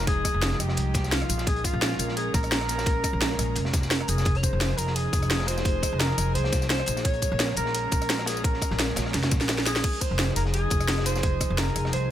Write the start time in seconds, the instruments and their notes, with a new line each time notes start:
Already playing: upright bass F1, analog synth pad F3 G#3 D#4
0.07 alto saxophone G#4, kick, closed hi-hat
0.25 kick, cross-stick, closed hi-hat, tambourine
0.34 upright bass F1
0.42 snare, closed hi-hat
0.52 snare
0.60 upright bass F1, alto saxophone G4, cross-stick, closed hi-hat, tambourine
0.69 cross-stick, snare
0.77 upright bass C2, closed hi-hat
0.94 kick, snare, closed hi-hat, tambourine
1.04 snare, tambourine
1.11 alto saxophone F4, snare, closed hi-hat
1.22 cross-stick
1.29 upright bass A#1, closed hi-hat, tambourine
1.38 snare, tambourine
1.47 analog synth pad G#3 C#4 A#4, alto saxophone G#4, kick, closed hi-hat
1.56 closed hi-hat
1.64 alto saxophone F4, kick, closed hi-hat, tambourine
1.73 upright bass A#1
1.81 snare, closed hi-hat
1.91 snare
1.99 upright bass A#1, closed hi-hat, tambourine
2.08 snare
2.17 alto saxophone G#4, closed hi-hat
2.34 upright bass A#1, alto saxophone A#4, kick, closed hi-hat, tambourine
2.43 cross-stick, closed hi-hat, tambourine
2.52 snare, closed hi-hat
2.60 cross-stick, snare
2.69 snare, closed hi-hat, tambourine
2.78 snare, tambourine
2.86 kick, closed hi-hat
3.04 kick, cross-stick, closed hi-hat, tambourine
3.13 upright bass A#1
3.21 snare, closed hi-hat
3.31 snare
3.39 upright bass A#1, cross-stick, closed hi-hat, tambourine
3.56 upright bass F1, closed hi-hat
3.65 snare
3.73 kick, snare, closed hi-hat, tambourine
3.82 snare, tambourine
3.91 snare, closed hi-hat
4.01 alto saxophone A#4, cross-stick
4.08 upright bass F1, alto saxophone G#4, closed hi-hat, tambourine
4.18 snare, tambourine
4.25 analog synth pad F3 D#4 G#4, kick, closed hi-hat
4.35 alto saxophone C#5, closed hi-hat
4.43 alto saxophone C5, kick, closed hi-hat, tambourine
4.53 upright bass F1
4.60 snare, closed hi-hat
4.70 snare
4.78 upright bass F1, alto saxophone A#4, closed hi-hat, tambourine
4.87 snare
4.96 alto saxophone G#4, closed hi-hat
5.13 upright bass F1, kick, closed hi-hat, tambourine
5.22 cross-stick, closed hi-hat, tambourine
5.30 snare, closed hi-hat
5.40 cross-stick, snare
5.47 alto saxophone C5, snare, closed hi-hat, tambourine
5.58 snare, tambourine
5.65 kick, closed hi-hat
5.83 kick, cross-stick, closed hi-hat, tambourine
5.92 upright bass F1
5.99 alto saxophone A#4, snare, closed hi-hat
6.09 snare
6.18 upright bass F1, cross-stick, closed hi-hat, tambourine
6.34 upright bass C2, alto saxophone C5, closed hi-hat
6.44 snare
6.52 kick, snare, closed hi-hat, tambourine
6.62 snare, tambourine
6.69 alto saxophone C5, snare, closed hi-hat
6.80 cross-stick
6.86 upright bass A#1, closed hi-hat, tambourine
6.97 snare, tambourine
7.04 analog synth pad G#3 C#4 A#4, alto saxophone C#5, kick, closed hi-hat
7.13 closed hi-hat
7.22 kick, closed hi-hat, tambourine
7.32 upright bass A#1
7.39 snare, closed hi-hat
7.49 snare
7.56 upright bass A#1, alto saxophone A#4, closed hi-hat, tambourine
7.66 snare
7.74 closed hi-hat
7.92 upright bass A#1, kick, closed hi-hat, tambourine
8.01 cross-stick, closed hi-hat, tambourine
8.09 snare, closed hi-hat
8.19 cross-stick, snare
8.26 alto saxophone G#4, snare, closed hi-hat, tambourine
8.37 tambourine
8.44 alto saxophone A#4, kick, closed hi-hat
8.54 snare
8.62 kick, cross-stick, closed hi-hat, tambourine
8.71 upright bass A#1, snare
8.79 snare, closed hi-hat
8.89 snare
8.96 upright bass A#1, cross-stick, snare, closed hi-hat, tambourine
9.06 cross-stick, snare
9.14 upright bass F1, snare, closed hi-hat
9.23 snare, closed hi-hat
9.31 upright bass A#1, kick, snare, closed hi-hat, tambourine
9.41 snare, closed hi-hat, tambourine
9.49 snare, closed hi-hat
9.58 snare
9.66 alto saxophone G#4, snare, closed hi-hat, tambourine
9.75 snare, tambourine
9.84 analog synth pad F3 D#4 G#4, kick, closed hi-hat, crash
9.93 closed hi-hat
10.01 alto saxophone C5, kick, closed hi-hat, tambourine
10.11 upright bass F1
10.19 snare, closed hi-hat
10.29 snare
10.36 upright bass F1, alto saxophone A#4, closed hi-hat, tambourine
10.46 snare
10.53 alto saxophone G#4, closed hi-hat
10.70 upright bass F1, kick, closed hi-hat, tambourine
10.80 cross-stick, closed hi-hat, tambourine
10.88 snare, closed hi-hat
10.98 cross-stick, snare
11.06 alto saxophone C5, snare, closed hi-hat, tambourine
11.15 snare, tambourine
11.23 kick, closed hi-hat
11.40 kick, cross-stick, closed hi-hat, tambourine
11.50 upright bass F1
11.58 alto saxophone A#4, snare, closed hi-hat
11.67 snare
11.76 upright bass F1, cross-stick, closed hi-hat, tambourine
11.85 cross-stick, snare
11.93 upright bass C2, alto saxophone C5, closed hi-hat